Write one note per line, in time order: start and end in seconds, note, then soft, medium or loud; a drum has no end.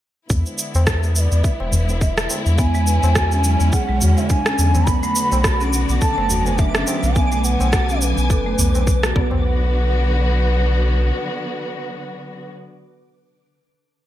0.29 0.44 E2 loud
0.29 9.11 D3 medium
0.29 4.83 G#3 medium
0.29 2.56 B3 medium
0.29 4.83 E4 medium
0.29 kick loud
0.29 shaker soft
0.46 tabla tin soft
0.46 shaker soft
0.58 shaker medium
0.75 1.28 E2 medium
0.75 tabla na medium
0.75 shaker soft
0.87 kick loud
0.87 cross-stick medium
0.87 shaker soft
1.03 shaker soft
1.16 1.21 E5 medium
1.16 shaker medium
1.20 1.45 D5 medium
1.32 1.42 E2 medium
1.32 shaker soft
1.44 2.00 E5 medium
1.44 kick medium
1.44 shaker soft
1.60 2.27 E1 loud
1.60 tabla na medium
1.72 tabla ge medium
1.72 shaker medium
1.89 tabla tin medium
1.89 shaker soft
2.00 2.60 E5 medium
2.00 kick medium
2.00 shaker soft
2.18 cross-stick medium
2.18 shaker soft
2.30 tabla na medium
2.30 shaker medium
2.46 2.99 E2 medium
2.46 shaker soft
2.58 2.74 B3 medium
2.58 4.85 C#4 medium
2.58 3.74 G#5 loud
2.58 kick loud
2.58 shaker soft
2.74 2.86 G#3 medium
2.74 tabla tin soft
2.74 shaker soft
2.87 2.96 B4 medium
2.87 shaker medium
3.03 3.56 E2 medium
3.03 3.14 G#3 medium
3.03 tabla na medium
3.03 shaker soft
3.15 3.30 F#4 medium
3.15 kick loud
3.15 cross-stick medium
3.15 shaker soft
3.32 3.43 C#4 medium
3.32 shaker soft
3.44 3.60 F#3 medium
3.44 shaker medium
3.60 3.71 E2 medium
3.60 3.71 B3 medium
3.60 shaker soft
3.72 3.88 G#4 loud
3.72 4.20 F#5 loud
3.72 kick loud
3.72 shaker soft
3.89 4.03 B1 loud
3.89 4.00 G#3 loud
4.01 4.15 E2 medium
4.01 4.16 F#4 medium
4.01 tabla tin soft
4.01 tabla ge medium
4.01 shaker medium
4.17 4.28 G#3 medium
4.17 4.31 E5 medium
4.17 tabla na medium
4.17 shaker soft
4.30 4.39 D4 medium
4.30 4.89 G#5 loud
4.30 kick medium
4.30 shaker soft
4.46 4.58 C#4 medium
4.46 cross-stick medium
4.46 shaker soft
4.58 4.83 E2 loud
4.58 4.74 F#3 medium
4.58 shaker medium
4.75 4.86 B3 medium
4.75 tabla na medium
4.75 tabla ge medium
4.75 shaker soft
4.87 5.01 B1 loud
4.87 9.45 D3 medium
4.87 9.12 F#3 medium
4.87 5.02 B3 loud
4.87 9.12 B3 medium
4.87 7.13 F#4 medium
4.87 5.75 B5 loud
4.87 9.45 D6 medium
4.87 kick loud
4.87 shaker soft
5.03 5.14 A3 loud
5.03 tabla tin soft
5.03 shaker soft
5.15 5.25 B4 medium
5.15 shaker medium
5.32 5.85 B1 medium
5.32 5.43 A3 medium
5.32 tabla na medium
5.32 shaker soft
5.44 5.59 F#4 medium
5.44 kick loud
5.44 cross-stick medium
5.44 shaker soft
5.61 5.72 C#4 medium
5.61 shaker soft
5.73 5.88 F#3 medium
5.73 shaker medium
5.89 6.00 B1 medium
5.89 6.00 B3 medium
5.89 shaker soft
6.01 6.17 A4 loud
6.01 6.47 A5 loud
6.01 kick loud
6.01 shaker soft
6.18 6.84 F#1 medium
6.18 6.29 A3 medium
6.18 tabla na medium
6.30 6.45 F#4 medium
6.30 tabla ge medium
6.30 shaker medium
6.46 6.57 A3 medium
6.46 6.60 G#5 loud
6.46 tabla tin medium
6.46 shaker soft
6.58 6.68 D4 medium
6.58 7.17 E5 loud
6.58 kick loud
6.58 shaker soft
6.75 6.87 C#4 medium
6.75 cross-stick medium
6.75 shaker soft
6.87 7.03 F#3 medium
6.87 tabla na medium
6.87 shaker medium
7.03 7.56 B1 medium
7.03 7.15 B3 medium
7.03 shaker soft
7.16 7.31 B3 loud
7.16 7.46 G#5 loud
7.16 9.14 G#5 medium
7.16 kick loud
7.16 shaker soft
7.32 7.43 A3 loud
7.32 tabla tin soft
7.32 shaker soft
7.44 7.54 B4 medium
7.44 8.03 F#5 loud
7.44 shaker medium
7.60 8.13 B1 medium
7.60 7.72 A3 medium
7.60 tabla na medium
7.60 shaker soft
7.73 7.88 F#4 medium
7.73 kick loud
7.73 cross-stick medium
7.73 shaker soft
7.89 8.01 C#4 medium
7.89 shaker soft
8.01 8.17 F#3 medium
8.01 9.15 B4 medium
8.01 shaker medium
8.18 8.31 B1 medium
8.18 8.29 B3 medium
8.18 shaker soft
8.30 8.55 F#1 medium
8.30 8.46 A4 loud
8.30 kick loud
8.30 shaker soft
8.46 8.57 A3 loud
8.59 9.13 B1 medium
8.59 8.73 B3 medium
8.59 tabla tin soft
8.59 tabla ge medium
8.59 shaker medium
8.75 8.86 F#3 medium
8.75 tabla na medium
8.75 shaker soft
8.87 9.02 B4 medium
8.87 kick medium
8.87 shaker soft
9.03 9.10 F#4 medium
9.03 cross-stick medium
9.03 shaker soft
9.15 11.12 B1 loud
9.15 12.49 D3 medium
9.15 12.49 F#3 medium
9.15 12.49 B3 medium
9.15 9.69 B3 medium
9.15 12.49 F#4 medium
9.15 9.22 D5 medium
9.15 kick loud
9.21 12.49 B4 loud
9.31 tabla na medium
9.31 tabla ge medium